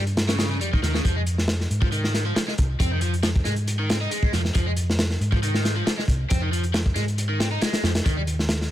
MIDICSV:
0, 0, Header, 1, 4, 480
1, 0, Start_track
1, 0, Key_signature, -4, "minor"
1, 0, Tempo, 437956
1, 1146, Time_signature, 4, 2, 24, 8
1, 9551, End_track
2, 0, Start_track
2, 0, Title_t, "Overdriven electric guitar"
2, 0, Program_c, 0, 29
2, 313, Note_on_c, 0, 49, 102
2, 412, Note_off_c, 0, 49, 0
2, 425, Note_on_c, 0, 49, 80
2, 539, Note_off_c, 0, 49, 0
2, 552, Note_on_c, 0, 49, 77
2, 623, Note_off_c, 0, 49, 0
2, 665, Note_on_c, 0, 55, 84
2, 745, Note_off_c, 0, 55, 0
2, 798, Note_on_c, 0, 51, 74
2, 866, Note_off_c, 0, 51, 0
2, 908, Note_on_c, 0, 51, 78
2, 1022, Note_off_c, 0, 51, 0
2, 1034, Note_on_c, 0, 49, 98
2, 1104, Note_off_c, 0, 49, 0
2, 1146, Note_on_c, 0, 53, 86
2, 1261, Note_off_c, 0, 53, 0
2, 1273, Note_on_c, 0, 56, 99
2, 1315, Note_off_c, 0, 56, 0
2, 1994, Note_on_c, 0, 53, 82
2, 2064, Note_off_c, 0, 53, 0
2, 2107, Note_on_c, 0, 51, 85
2, 2462, Note_off_c, 0, 51, 0
2, 2477, Note_on_c, 0, 53, 102
2, 2572, Note_off_c, 0, 53, 0
2, 2586, Note_on_c, 0, 53, 99
2, 2634, Note_off_c, 0, 53, 0
2, 2716, Note_on_c, 0, 56, 79
2, 2757, Note_off_c, 0, 56, 0
2, 3069, Note_on_c, 0, 60, 103
2, 3183, Note_off_c, 0, 60, 0
2, 3195, Note_on_c, 0, 51, 103
2, 3296, Note_off_c, 0, 51, 0
2, 3312, Note_on_c, 0, 53, 75
2, 3428, Note_off_c, 0, 53, 0
2, 3548, Note_on_c, 0, 53, 103
2, 3595, Note_off_c, 0, 53, 0
2, 3787, Note_on_c, 0, 56, 77
2, 3866, Note_off_c, 0, 56, 0
2, 4156, Note_on_c, 0, 51, 103
2, 4257, Note_off_c, 0, 51, 0
2, 4268, Note_on_c, 0, 60, 78
2, 4346, Note_off_c, 0, 60, 0
2, 4394, Note_on_c, 0, 63, 79
2, 4496, Note_off_c, 0, 63, 0
2, 4504, Note_on_c, 0, 56, 103
2, 4734, Note_off_c, 0, 56, 0
2, 4744, Note_on_c, 0, 53, 78
2, 4824, Note_off_c, 0, 53, 0
2, 4985, Note_on_c, 0, 53, 84
2, 5100, Note_off_c, 0, 53, 0
2, 5109, Note_on_c, 0, 56, 99
2, 5154, Note_off_c, 0, 56, 0
2, 5835, Note_on_c, 0, 53, 81
2, 5904, Note_off_c, 0, 53, 0
2, 5946, Note_on_c, 0, 51, 85
2, 6301, Note_off_c, 0, 51, 0
2, 6313, Note_on_c, 0, 53, 102
2, 6410, Note_off_c, 0, 53, 0
2, 6423, Note_on_c, 0, 53, 99
2, 6472, Note_off_c, 0, 53, 0
2, 6551, Note_on_c, 0, 56, 76
2, 6594, Note_off_c, 0, 56, 0
2, 6899, Note_on_c, 0, 60, 102
2, 7018, Note_off_c, 0, 60, 0
2, 7029, Note_on_c, 0, 51, 105
2, 7133, Note_off_c, 0, 51, 0
2, 7141, Note_on_c, 0, 53, 78
2, 7262, Note_off_c, 0, 53, 0
2, 7380, Note_on_c, 0, 53, 104
2, 7431, Note_off_c, 0, 53, 0
2, 7621, Note_on_c, 0, 56, 80
2, 7703, Note_off_c, 0, 56, 0
2, 7989, Note_on_c, 0, 51, 104
2, 8093, Note_off_c, 0, 51, 0
2, 8104, Note_on_c, 0, 60, 77
2, 8184, Note_off_c, 0, 60, 0
2, 8234, Note_on_c, 0, 63, 74
2, 8336, Note_off_c, 0, 63, 0
2, 8347, Note_on_c, 0, 56, 101
2, 8576, Note_off_c, 0, 56, 0
2, 8584, Note_on_c, 0, 53, 77
2, 8664, Note_off_c, 0, 53, 0
2, 8826, Note_on_c, 0, 51, 88
2, 8941, Note_off_c, 0, 51, 0
2, 8954, Note_on_c, 0, 55, 101
2, 8996, Note_off_c, 0, 55, 0
2, 9551, End_track
3, 0, Start_track
3, 0, Title_t, "Picked electric bass"
3, 0, Program_c, 1, 34
3, 0, Note_on_c, 1, 43, 91
3, 670, Note_off_c, 1, 43, 0
3, 670, Note_on_c, 1, 41, 97
3, 839, Note_off_c, 1, 41, 0
3, 908, Note_on_c, 1, 39, 106
3, 1078, Note_off_c, 1, 39, 0
3, 1151, Note_on_c, 1, 41, 102
3, 1813, Note_off_c, 1, 41, 0
3, 1868, Note_on_c, 1, 44, 93
3, 2532, Note_off_c, 1, 44, 0
3, 2835, Note_on_c, 1, 36, 95
3, 3002, Note_off_c, 1, 36, 0
3, 3069, Note_on_c, 1, 41, 104
3, 3732, Note_off_c, 1, 41, 0
3, 3789, Note_on_c, 1, 44, 92
3, 4452, Note_off_c, 1, 44, 0
3, 4750, Note_on_c, 1, 41, 103
3, 4919, Note_off_c, 1, 41, 0
3, 4990, Note_on_c, 1, 41, 101
3, 5653, Note_off_c, 1, 41, 0
3, 5706, Note_on_c, 1, 44, 94
3, 6371, Note_off_c, 1, 44, 0
3, 6664, Note_on_c, 1, 36, 91
3, 6836, Note_off_c, 1, 36, 0
3, 6917, Note_on_c, 1, 41, 102
3, 7577, Note_off_c, 1, 41, 0
3, 7625, Note_on_c, 1, 44, 90
3, 8290, Note_off_c, 1, 44, 0
3, 8585, Note_on_c, 1, 41, 96
3, 8757, Note_off_c, 1, 41, 0
3, 8831, Note_on_c, 1, 39, 100
3, 9493, Note_off_c, 1, 39, 0
3, 9551, End_track
4, 0, Start_track
4, 0, Title_t, "Drums"
4, 74, Note_on_c, 9, 42, 41
4, 183, Note_off_c, 9, 42, 0
4, 186, Note_on_c, 9, 42, 79
4, 188, Note_on_c, 9, 38, 117
4, 296, Note_off_c, 9, 42, 0
4, 298, Note_off_c, 9, 38, 0
4, 313, Note_on_c, 9, 38, 107
4, 314, Note_on_c, 9, 42, 85
4, 423, Note_off_c, 9, 38, 0
4, 424, Note_off_c, 9, 42, 0
4, 424, Note_on_c, 9, 38, 114
4, 432, Note_on_c, 9, 42, 86
4, 534, Note_off_c, 9, 38, 0
4, 542, Note_off_c, 9, 42, 0
4, 668, Note_on_c, 9, 42, 87
4, 777, Note_off_c, 9, 42, 0
4, 805, Note_on_c, 9, 36, 102
4, 905, Note_on_c, 9, 38, 46
4, 914, Note_off_c, 9, 36, 0
4, 916, Note_on_c, 9, 42, 74
4, 1015, Note_off_c, 9, 38, 0
4, 1025, Note_off_c, 9, 42, 0
4, 1034, Note_on_c, 9, 38, 47
4, 1143, Note_off_c, 9, 38, 0
4, 1150, Note_on_c, 9, 36, 101
4, 1153, Note_on_c, 9, 42, 90
4, 1260, Note_off_c, 9, 36, 0
4, 1263, Note_off_c, 9, 42, 0
4, 1386, Note_on_c, 9, 42, 63
4, 1495, Note_off_c, 9, 42, 0
4, 1516, Note_on_c, 9, 38, 50
4, 1620, Note_off_c, 9, 38, 0
4, 1620, Note_on_c, 9, 38, 117
4, 1634, Note_on_c, 9, 42, 87
4, 1730, Note_off_c, 9, 38, 0
4, 1744, Note_off_c, 9, 42, 0
4, 1758, Note_on_c, 9, 38, 45
4, 1868, Note_off_c, 9, 38, 0
4, 1873, Note_on_c, 9, 42, 65
4, 1982, Note_off_c, 9, 42, 0
4, 1992, Note_on_c, 9, 36, 105
4, 2102, Note_off_c, 9, 36, 0
4, 2105, Note_on_c, 9, 42, 87
4, 2214, Note_off_c, 9, 42, 0
4, 2236, Note_on_c, 9, 38, 49
4, 2346, Note_off_c, 9, 38, 0
4, 2348, Note_on_c, 9, 38, 52
4, 2352, Note_on_c, 9, 42, 70
4, 2457, Note_off_c, 9, 38, 0
4, 2462, Note_off_c, 9, 42, 0
4, 2590, Note_on_c, 9, 38, 126
4, 2592, Note_on_c, 9, 42, 90
4, 2700, Note_off_c, 9, 38, 0
4, 2702, Note_off_c, 9, 42, 0
4, 2714, Note_on_c, 9, 38, 52
4, 2823, Note_off_c, 9, 38, 0
4, 2827, Note_on_c, 9, 42, 68
4, 2834, Note_on_c, 9, 36, 98
4, 2936, Note_off_c, 9, 42, 0
4, 2943, Note_off_c, 9, 36, 0
4, 3067, Note_on_c, 9, 36, 120
4, 3071, Note_on_c, 9, 42, 89
4, 3177, Note_off_c, 9, 36, 0
4, 3180, Note_off_c, 9, 42, 0
4, 3299, Note_on_c, 9, 42, 65
4, 3408, Note_off_c, 9, 42, 0
4, 3437, Note_on_c, 9, 42, 44
4, 3542, Note_off_c, 9, 42, 0
4, 3542, Note_on_c, 9, 38, 112
4, 3542, Note_on_c, 9, 42, 89
4, 3651, Note_off_c, 9, 38, 0
4, 3651, Note_off_c, 9, 42, 0
4, 3678, Note_on_c, 9, 36, 105
4, 3775, Note_on_c, 9, 38, 38
4, 3782, Note_on_c, 9, 42, 72
4, 3788, Note_off_c, 9, 36, 0
4, 3885, Note_off_c, 9, 38, 0
4, 3892, Note_off_c, 9, 42, 0
4, 3904, Note_on_c, 9, 42, 45
4, 4014, Note_off_c, 9, 42, 0
4, 4028, Note_on_c, 9, 42, 92
4, 4137, Note_off_c, 9, 42, 0
4, 4270, Note_on_c, 9, 42, 72
4, 4275, Note_on_c, 9, 38, 116
4, 4380, Note_off_c, 9, 42, 0
4, 4385, Note_off_c, 9, 38, 0
4, 4507, Note_on_c, 9, 42, 90
4, 4617, Note_off_c, 9, 42, 0
4, 4632, Note_on_c, 9, 36, 108
4, 4742, Note_off_c, 9, 36, 0
4, 4745, Note_on_c, 9, 38, 48
4, 4747, Note_on_c, 9, 42, 72
4, 4855, Note_off_c, 9, 38, 0
4, 4857, Note_off_c, 9, 42, 0
4, 4875, Note_on_c, 9, 38, 42
4, 4983, Note_on_c, 9, 42, 85
4, 4985, Note_off_c, 9, 38, 0
4, 4989, Note_on_c, 9, 36, 108
4, 5092, Note_off_c, 9, 42, 0
4, 5099, Note_off_c, 9, 36, 0
4, 5222, Note_on_c, 9, 42, 67
4, 5332, Note_off_c, 9, 42, 0
4, 5366, Note_on_c, 9, 38, 58
4, 5467, Note_off_c, 9, 38, 0
4, 5467, Note_on_c, 9, 38, 116
4, 5468, Note_on_c, 9, 42, 82
4, 5576, Note_off_c, 9, 38, 0
4, 5578, Note_off_c, 9, 42, 0
4, 5592, Note_on_c, 9, 38, 47
4, 5702, Note_off_c, 9, 38, 0
4, 5714, Note_on_c, 9, 42, 62
4, 5823, Note_off_c, 9, 42, 0
4, 5834, Note_on_c, 9, 36, 102
4, 5943, Note_off_c, 9, 36, 0
4, 5949, Note_on_c, 9, 42, 93
4, 6058, Note_off_c, 9, 42, 0
4, 6076, Note_on_c, 9, 38, 51
4, 6185, Note_off_c, 9, 38, 0
4, 6191, Note_on_c, 9, 38, 57
4, 6193, Note_on_c, 9, 42, 73
4, 6301, Note_off_c, 9, 38, 0
4, 6303, Note_off_c, 9, 42, 0
4, 6432, Note_on_c, 9, 42, 100
4, 6433, Note_on_c, 9, 38, 124
4, 6541, Note_off_c, 9, 42, 0
4, 6542, Note_off_c, 9, 38, 0
4, 6564, Note_on_c, 9, 38, 49
4, 6663, Note_on_c, 9, 36, 94
4, 6671, Note_on_c, 9, 42, 70
4, 6673, Note_off_c, 9, 38, 0
4, 6772, Note_off_c, 9, 36, 0
4, 6780, Note_off_c, 9, 42, 0
4, 6908, Note_on_c, 9, 42, 89
4, 6916, Note_on_c, 9, 36, 116
4, 7018, Note_off_c, 9, 42, 0
4, 7026, Note_off_c, 9, 36, 0
4, 7156, Note_on_c, 9, 42, 68
4, 7266, Note_off_c, 9, 42, 0
4, 7272, Note_on_c, 9, 42, 45
4, 7381, Note_off_c, 9, 42, 0
4, 7389, Note_on_c, 9, 38, 127
4, 7389, Note_on_c, 9, 42, 83
4, 7498, Note_off_c, 9, 42, 0
4, 7499, Note_off_c, 9, 38, 0
4, 7517, Note_on_c, 9, 36, 94
4, 7624, Note_on_c, 9, 42, 64
4, 7626, Note_off_c, 9, 36, 0
4, 7632, Note_on_c, 9, 38, 36
4, 7734, Note_off_c, 9, 42, 0
4, 7741, Note_off_c, 9, 38, 0
4, 7760, Note_on_c, 9, 42, 45
4, 7870, Note_off_c, 9, 42, 0
4, 7870, Note_on_c, 9, 42, 97
4, 7979, Note_off_c, 9, 42, 0
4, 8113, Note_on_c, 9, 38, 97
4, 8115, Note_on_c, 9, 42, 87
4, 8223, Note_off_c, 9, 38, 0
4, 8225, Note_off_c, 9, 42, 0
4, 8345, Note_on_c, 9, 42, 89
4, 8354, Note_on_c, 9, 38, 117
4, 8455, Note_off_c, 9, 42, 0
4, 8463, Note_off_c, 9, 38, 0
4, 8474, Note_on_c, 9, 38, 100
4, 8480, Note_on_c, 9, 42, 86
4, 8584, Note_off_c, 9, 38, 0
4, 8589, Note_off_c, 9, 42, 0
4, 8589, Note_on_c, 9, 38, 102
4, 8599, Note_on_c, 9, 42, 78
4, 8699, Note_off_c, 9, 38, 0
4, 8708, Note_off_c, 9, 42, 0
4, 8715, Note_on_c, 9, 38, 120
4, 8715, Note_on_c, 9, 42, 86
4, 8824, Note_off_c, 9, 38, 0
4, 8825, Note_off_c, 9, 42, 0
4, 8831, Note_on_c, 9, 36, 114
4, 8832, Note_on_c, 9, 42, 83
4, 8941, Note_off_c, 9, 36, 0
4, 8941, Note_off_c, 9, 42, 0
4, 9066, Note_on_c, 9, 42, 72
4, 9175, Note_off_c, 9, 42, 0
4, 9199, Note_on_c, 9, 38, 55
4, 9303, Note_off_c, 9, 38, 0
4, 9303, Note_on_c, 9, 38, 127
4, 9306, Note_on_c, 9, 42, 97
4, 9412, Note_off_c, 9, 38, 0
4, 9416, Note_off_c, 9, 42, 0
4, 9440, Note_on_c, 9, 38, 49
4, 9550, Note_off_c, 9, 38, 0
4, 9551, End_track
0, 0, End_of_file